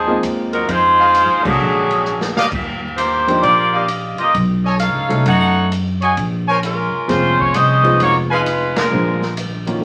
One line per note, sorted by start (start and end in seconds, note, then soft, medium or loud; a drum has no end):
0.00 0.20 D#2 medium
0.00 0.23 F3 medium
0.00 0.22 C4 medium
0.00 0.22 D#4 medium
0.00 0.13 G#4 medium
0.00 0.22 G#4 loud
0.00 0.13 C5 medium
0.00 0.13 D#5 medium
0.00 0.13 F5 loud
0.07 0.65 G#3 medium
0.07 0.65 A#3 medium
0.07 0.65 C4 medium
0.07 0.65 D#4 medium
0.07 0.65 F4 medium
0.23 0.65 D#2 medium
0.23 hi-hat pedal medium
0.23 ride medium
0.52 0.67 F#3 medium
0.52 0.67 C4 medium
0.52 0.67 D#4 medium
0.52 0.68 A#4 medium
0.52 ride soft
0.67 1.26 F2 medium
0.67 1.44 G#3 medium
0.67 1.44 D#4 medium
0.67 1.44 F4 loud
0.67 1.44 C5 loud
0.67 kick soft
0.67 ride medium
0.99 1.57 G#4 medium
0.99 1.57 C5 medium
0.99 1.57 D#5 medium
0.99 1.57 F5 loud
1.14 hi-hat pedal medium
1.14 ride medium
1.30 1.44 D#2 medium
1.43 1.59 C2 medium
1.43 2.03 D3 medium
1.43 2.35 F#3 medium
1.43 2.03 G#3 medium
1.43 2.03 A#3 medium
1.43 2.35 C#4 medium
1.43 2.35 D4 medium
1.43 2.03 F#4 medium
1.43 2.35 G#4 medium
1.43 2.03 C#5 medium
1.43 kick medium
1.43 crash medium
1.60 2.32 A#1 medium
1.91 ride soft
2.06 hi-hat pedal medium
2.21 snare medium
2.37 2.47 G4 medium
2.37 2.47 D5 medium
2.37 2.47 D#5 medium
2.37 2.47 F5 loud
2.37 muted upright bass stroke soft
2.37 snare medium
2.52 3.39 D#2 medium
2.52 kick medium
2.52 crash medium
2.97 3.39 A#3 medium
2.97 3.40 F4 medium
2.97 3.40 G4 medium
2.97 3.39 C5 medium
2.97 hi-hat pedal medium
2.97 ride medium
3.27 3.85 F3 medium
3.27 3.86 A#3 medium
3.27 3.86 D4 medium
3.27 3.86 D#4 medium
3.27 3.86 G4 medium
3.27 ride soft
3.42 4.15 A#1 medium
3.42 3.85 A#3 medium
3.42 3.85 F4 medium
3.42 3.85 G4 medium
3.42 3.85 D5 loud
3.42 kick soft
3.42 ride medium
3.73 4.31 G4 medium
3.73 4.31 D5 medium
3.73 4.31 D#5 medium
3.73 4.31 F5 medium
3.88 hi-hat pedal medium
3.88 ride medium
4.18 4.34 A#3 medium
4.18 4.33 F4 medium
4.18 4.34 G4 medium
4.18 4.34 D#5 medium
4.18 muted upright bass stroke soft
4.18 ride soft
4.34 4.91 B1 medium
4.34 kick soft
4.34 ride medium
4.65 4.75 A4 medium
4.65 4.75 C#5 medium
4.65 4.75 D#5 medium
4.65 4.75 G#5 medium
4.79 5.22 D#4 medium
4.79 5.22 A4 medium
4.79 5.23 C#5 medium
4.79 5.23 F5 medium
4.79 hi-hat pedal medium
4.79 ride medium
4.93 5.08 C#2 medium
5.09 5.24 C2 medium
5.09 5.68 F#3 medium
5.09 5.68 A3 medium
5.09 5.68 C#4 medium
5.09 5.68 D#4 medium
5.09 5.68 A4 medium
5.09 ride soft
5.26 6.13 F#2 medium
5.26 5.69 D#4 loud
5.26 5.69 A4 medium
5.26 5.69 C#5 loud
5.26 5.69 F#5 loud
5.26 kick soft
5.26 ride medium
5.72 hi-hat pedal medium
5.72 ride medium
6.02 6.16 F#4 medium
6.02 6.16 C#5 medium
6.02 6.16 D#5 medium
6.02 6.16 G#5 medium
6.02 ride soft
6.17 6.89 A#1 medium
6.17 kick soft
6.17 ride medium
6.47 6.58 A#4 medium
6.47 6.58 C5 medium
6.47 6.58 C#5 medium
6.47 6.58 G#5 loud
6.63 7.06 G#3 medium
6.63 7.06 C#4 medium
6.63 7.06 F4 medium
6.63 7.06 A#4 medium
6.63 hi-hat pedal medium
6.63 ride medium
6.94 muted upright bass stroke soft
7.08 7.52 F1 medium
7.08 7.78 F3 medium
7.08 7.39 G#3 medium
7.08 7.78 A#3 medium
7.08 7.79 C4 medium
7.08 7.78 C#4 medium
7.08 7.39 C#4 medium
7.08 7.38 F4 medium
7.08 7.79 G#4 medium
7.08 7.39 C5 loud
7.08 kick soft
7.08 snare soft
7.08 ride medium
7.39 7.55 G#3 medium
7.39 7.54 C4 medium
7.39 7.55 F4 medium
7.39 7.55 C#5 medium
7.39 kick medium
7.54 7.97 C2 medium
7.54 8.01 C#4 medium
7.54 8.01 G#4 medium
7.54 8.01 C5 medium
7.54 8.01 D#5 loud
7.54 hi-hat pedal soft
7.54 ride medium
7.83 8.42 F3 medium
7.83 8.42 G#3 medium
7.83 8.42 B3 medium
7.83 8.43 D#4 medium
7.83 8.43 F4 medium
7.83 ride soft
8.00 8.88 F1 medium
8.00 8.16 A#3 medium
8.00 8.16 D#4 medium
8.00 8.16 F#4 medium
8.00 8.16 C#5 medium
8.00 kick soft
8.00 ride medium
8.30 8.74 G#3 medium
8.30 8.74 D#4 medium
8.30 8.74 F4 medium
8.30 8.41 B4 medium
8.30 8.73 B4 medium
8.30 8.40 D#5 medium
8.30 8.41 F5 medium
8.30 8.41 G#5 loud
8.46 hi-hat pedal medium
8.46 ride medium
8.76 9.34 G#3 medium
8.76 9.34 D4 medium
8.76 9.34 F4 medium
8.76 9.34 A#4 medium
8.76 snare medium
8.76 ride medium
8.91 9.79 A#1 medium
8.91 9.19 F3 medium
8.91 9.19 G#3 medium
8.91 9.19 A#3 medium
8.91 9.19 D4 medium
8.91 9.19 F4 medium
9.22 snare soft
9.37 hi-hat pedal soft
9.37 ride medium
9.66 9.81 D#3 medium
9.66 9.81 F#3 soft
9.66 9.81 A#3 medium
9.66 9.82 C#4 soft
9.66 9.82 F4 medium
9.66 ride soft